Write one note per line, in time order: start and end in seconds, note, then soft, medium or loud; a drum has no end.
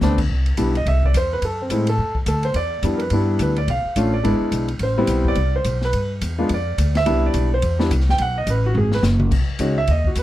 0.01 0.29 D2 medium
0.01 0.17 A3 medium
0.01 0.18 B3 medium
0.01 0.18 C4 medium
0.01 0.18 D4 medium
0.01 snare medium
0.01 hi-hat pedal medium
0.18 kick medium
0.18 crash medium
0.30 0.57 C2 medium
0.30 kick soft
0.46 ride soft
0.57 0.85 B1 medium
0.57 0.73 G3 medium
0.57 0.73 B3 medium
0.57 0.73 D4 medium
0.57 0.73 E4 medium
0.57 kick soft
0.57 hi-hat pedal soft
0.57 ride medium
0.75 0.87 D#5 medium
0.75 ride soft
0.86 1.13 C2 medium
0.86 1.03 E5 medium
0.86 kick soft
0.86 ride medium
1.03 1.15 D5 medium
1.03 kick soft
1.14 1.41 E2 medium
1.14 1.32 C5 medium
1.14 kick soft
1.14 hi-hat pedal medium
1.14 ride medium
1.33 1.43 B4 medium
1.42 1.69 F#2 medium
1.42 1.60 A4 medium
1.42 kick soft
1.42 ride medium
1.62 1.70 C4 medium
1.69 1.97 A2 medium
1.69 1.86 G#3 medium
1.69 1.86 A3 medium
1.69 1.86 C4 medium
1.69 1.86 E4 medium
1.69 kick soft
1.69 hi-hat pedal medium
1.69 ride medium
1.87 2.15 A4 medium
1.87 ride medium
1.98 2.25 F2 medium
1.98 kick soft
2.15 kick soft
2.26 2.54 D2 medium
2.26 2.44 A4 medium
2.26 kick soft
2.26 hi-hat pedal medium
2.26 ride medium
2.43 2.55 C5 medium
2.43 ride soft
2.54 2.82 E2 medium
2.54 2.98 D5 medium
2.54 kick soft
2.54 ride medium
2.83 3.10 F2 loud
2.83 2.99 G3 medium
2.83 2.99 B3 medium
2.83 2.99 D4 medium
2.83 2.99 E4 medium
2.83 kick soft
2.83 hi-hat pedal medium
2.83 ride medium
2.97 2.99 A#4 medium
2.97 ride soft
3.01 3.38 B4 medium
3.10 3.39 G2 medium
3.10 3.54 G3 medium
3.10 3.54 B3 medium
3.10 3.54 D4 medium
3.10 3.54 E4 medium
3.10 kick soft
3.10 ride medium
3.39 3.67 D2 loud
3.39 3.57 B4 medium
3.39 kick soft
3.39 hi-hat pedal medium
3.39 ride medium
3.56 3.68 D5 medium
3.56 ride soft
3.68 3.84 B1 medium
3.68 4.11 F5 loud
3.68 kick soft
3.68 ride medium
3.85 muted upright bass stroke soft
3.96 4.23 A1 medium
3.96 4.12 A3 medium
3.96 4.12 C#4 medium
3.96 4.12 D4 medium
3.96 4.12 F4 medium
3.96 kick soft
3.96 hi-hat pedal medium
3.96 ride medium
4.14 4.50 D5 medium
4.23 4.39 G#1 medium
4.23 4.66 G#3 medium
4.23 4.66 B3 medium
4.23 4.66 D4 medium
4.23 4.66 E4 medium
4.23 kick soft
4.23 ride medium
4.40 muted upright bass stroke soft
4.52 4.79 B1 medium
4.52 kick soft
4.52 hi-hat pedal medium
4.52 ride medium
4.68 ride soft
4.79 5.07 A1 medium
4.79 5.24 C5 medium
4.79 kick soft
4.79 ride medium
4.98 5.35 G3 medium
4.98 5.35 B3 medium
4.98 5.35 C4 medium
4.98 5.35 E4 medium
5.07 5.35 B1 medium
5.07 kick soft
5.07 hi-hat pedal medium
5.07 ride medium
5.25 5.53 D5 loud
5.25 kick medium
5.35 5.64 C2 medium
5.35 kick soft
5.35 ride medium
5.56 5.81 C5 medium
5.64 5.93 B1 loud
5.64 kick soft
5.64 hi-hat pedal medium
5.64 ride medium
5.81 6.10 B4 loud
5.81 snare soft
5.93 6.21 G2 medium
5.93 kick soft
5.93 ride medium
6.21 6.49 E2 medium
6.21 kick soft
6.21 hi-hat pedal medium
6.21 ride medium
6.38 6.49 G#3 medium
6.38 6.49 B3 medium
6.38 6.49 D4 medium
6.38 6.49 F4 medium
6.49 6.77 F2 medium
6.49 kick soft
6.49 ride medium
6.54 6.94 D5 medium
6.78 7.05 D2 loud
6.78 kick soft
6.78 hi-hat pedal medium
6.78 ride medium
6.95 7.22 E5 loud
6.95 snare medium
6.95 ride soft
7.06 7.33 C2 medium
7.06 7.48 G3 medium
7.06 7.48 B3 medium
7.06 7.48 D4 medium
7.06 7.48 E4 medium
7.06 kick soft
7.06 ride medium
7.26 7.51 D5 medium
7.34 7.62 B1 medium
7.34 kick soft
7.34 hi-hat pedal medium
7.34 ride medium
7.54 7.79 C5 medium
7.62 7.90 E2 medium
7.62 kick soft
7.62 ride medium
7.79 7.90 G3 medium
7.79 7.90 B3 medium
7.79 7.90 D4 medium
7.79 7.90 E4 medium
7.79 snare medium
7.91 8.18 C2 loud
7.91 kick soft
7.91 hi-hat pedal medium
7.91 ride medium
8.00 snare soft
8.09 8.20 G5 loud
8.09 snare soft
8.18 8.46 B1 medium
8.18 8.37 F#5 loud
8.18 kick soft
8.18 ride medium
8.38 8.48 D#5 medium
8.47 8.74 A1 medium
8.47 8.65 B4 medium
8.47 kick soft
8.47 hi-hat pedal medium
8.47 ride medium
8.66 8.76 F#4 medium
8.75 9.02 G#1 medium
8.75 8.93 G#4 medium
8.75 floor tom medium
8.92 9.01 B4 medium
8.92 snare medium
9.03 9.31 F#1 loud
9.03 snare medium
9.03 hi-hat pedal medium
9.20 mid tom medium
9.31 9.47 B1 medium
9.31 kick medium
9.31 crash medium
9.49 muted upright bass stroke soft
9.59 9.87 C#2 medium
9.59 9.75 G#3 medium
9.59 9.75 C#4 medium
9.59 9.75 D#4 medium
9.59 9.76 F#4 medium
9.59 kick soft
9.59 hi-hat pedal medium
9.59 ride medium
9.78 9.88 E5 medium
9.87 10.15 D#2 medium
9.87 10.06 D#5 medium
9.87 kick soft
9.87 ride medium
10.04 10.17 F#4 medium
10.04 kick medium
10.15 10.23 E2 medium
10.15 10.23 B4 medium
10.15 kick soft
10.15 hi-hat pedal medium
10.15 ride medium